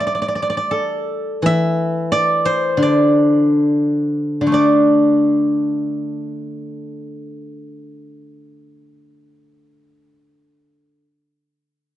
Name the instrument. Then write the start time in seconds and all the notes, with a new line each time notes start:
guzheng
Already playing: G3 G4 E5 G5
0.00 D5
0.07 D5
0.15 D5
0.22 D5
0.28 D5
0.35 D5
0.42 D5
0.50 D5
0.57 D5
0.71 A4
1.42 E3 E5
2.12 D5
2.45 C5
2.77 D3
2.82 D5
4.41 D3
4.47 A3
4.52 D4 D5